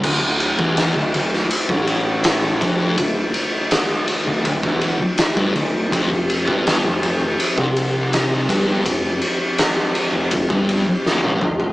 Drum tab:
CC |x---------------|----------------|----------------|----------------|
RD |--x-x-x-x-x-x-x-|x-x-x-x-x-x-x-x-|x-x-x-x-x-x-x-x-|x-x-x-x-x-x-----|
SD |----o--o----o---|----o-------o---|----o-------o---|----o-------o---|
T1 |----------------|----------------|----------------|-------------o--|
T2 |----------------|----------------|----------------|--------------o-|
FT |----------------|----------------|----------------|---------------o|
BD |o--o-----o----o-|o-------oo---o--|o--o-----o----o-|o-------oo------|